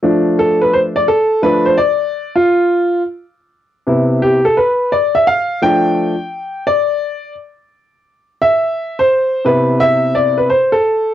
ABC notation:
X:1
M:4/4
L:1/16
Q:"Swing 16ths" 1/4=86
K:Flyd
V:1 name="Upright piano"
z2 A B c d A2 B c d3 F3- | F z6 z G A B2 d e f2 | g6 d4 z6 | e3 c3 B2 e2 d B c A3 |]
V:2 name="Upright piano"
[F,A,D]6 z2 [F,A,D]2 z6 | z6 [C,B,E]2 z8 | [F,A,D]2 z12 z2 | z6 [C,B,E]6 z4 |]